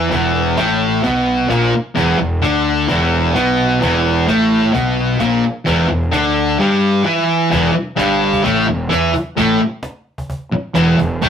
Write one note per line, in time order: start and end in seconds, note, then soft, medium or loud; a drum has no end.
0.00 0.12 E4 loud
0.10 0.55 E1 medium
0.10 0.56 E2 medium
0.10 0.57 E3 medium
0.10 cajon bass loud
0.35 cajon slap soft
0.46 cajon slap soft
0.57 1.00 A1 medium
0.57 1.02 A2 medium
0.57 1.03 A3 loud
0.57 cajon slap loud
0.81 cajon slap soft
1.03 1.47 B1 medium
1.03 1.48 B2 medium
1.03 1.50 B3 loud
1.03 cajon bass loud
1.16 cajon slap soft
1.28 cajon slap soft
1.49 1.72 A#1 medium
1.49 1.72 A#2 medium
1.49 1.73 A#3 medium
1.49 cajon slap loud
1.73 muted fingered electric bass stroke soft
1.73 muted distorted electric guitar stroke medium
1.73 cajon slap soft
1.95 2.19 E1 medium
1.95 2.18 E2 medium
1.95 2.19 E3 loud
1.95 cajon bass loud
2.19 2.41 E1 medium
2.19 2.38 E2 medium
2.19 cajon slap soft
2.42 2.86 D2 medium
2.42 2.88 D3 medium
2.42 2.88 D4 loud
2.42 cajon slap loud
2.67 cajon slap soft
2.88 3.33 E1 medium
2.88 3.34 E2 medium
2.88 3.34 E3 loud
2.88 cajon bass loud
3.02 cajon slap soft
3.14 cajon slap soft
3.33 3.78 B1 medium
3.33 3.80 B2 medium
3.33 3.81 B3 loud
3.33 cajon slap loud
3.60 cajon slap soft
3.80 4.25 E1 loud
3.80 4.27 E2 medium
3.80 4.27 E3 medium
3.80 cajon bass loud
4.06 cajon slap soft
4.27 4.71 A1 medium
4.27 4.73 A2 medium
4.27 4.74 A3 medium
4.27 cajon slap loud
4.52 cajon slap soft
4.73 5.18 B1 medium
4.73 5.20 B2 medium
4.73 5.20 B3 loud
4.73 cajon bass loud
4.98 cajon slap soft
5.20 5.42 A#1 loud
5.20 5.43 A#2 medium
5.20 5.44 A#3 loud
5.20 cajon slap loud
5.43 muted fingered electric bass stroke soft
5.43 muted distorted electric guitar stroke medium
5.43 cajon slap soft
5.65 5.89 E1 medium
5.65 5.87 E2 medium
5.65 5.89 E3 loud
5.65 cajon bass loud
5.89 6.12 E1 medium
5.89 6.08 E2 medium
5.89 cajon slap soft
6.02 cajon slap soft
6.11 6.56 D2 medium
6.11 6.58 D3 medium
6.11 6.59 D4 loud
6.11 cajon slap loud
6.37 cajon slap soft
6.58 7.05 G2 medium
6.58 7.05 G3 loud
7.03 7.50 E3 medium
7.03 7.51 E4 medium
7.50 7.74 E1 medium
7.50 7.72 E2 medium
7.50 7.74 E3 loud
7.50 cajon bass loud
7.73 muted distorted electric guitar stroke medium
7.73 muted fingered electric bass stroke soft
7.73 cajon slap soft
7.96 8.41 G1 loud
7.96 8.43 G2 medium
7.96 8.43 G3 loud
7.96 cajon slap loud
8.33 cajon bass medium
8.43 8.66 A1 loud
8.43 8.66 A2 medium
8.43 8.67 A3 loud
8.43 cajon bass loud
8.66 8.89 E1 medium
8.66 8.86 E2 medium
8.90 9.12 E2 loud
8.90 9.13 E3 medium
8.90 9.13 E4 loud
8.90 cajon slap loud
9.12 muted distorted electric guitar stroke medium
9.12 muted fingered electric bass stroke soft
9.12 cajon bass medium
9.37 9.59 A1 medium
9.37 9.59 A2 medium
9.37 9.60 A3 loud
9.37 cajon bass loud
9.60 cajon slap soft
9.83 cajon slap loud
10.18 cajon bass medium
10.30 cajon bass loud
10.52 muted fingered electric bass stroke soft
10.52 muted distorted electric guitar stroke medium
10.75 10.97 E1 loud
10.75 10.97 E2 medium
10.75 10.98 E3 loud
10.75 cajon slap loud
10.99 11.20 E1 medium
10.99 11.17 E2 medium
10.99 cajon bass medium
11.22 11.29 A1 loud
11.22 11.29 A2 loud
11.22 11.29 A3 loud
11.22 cajon bass loud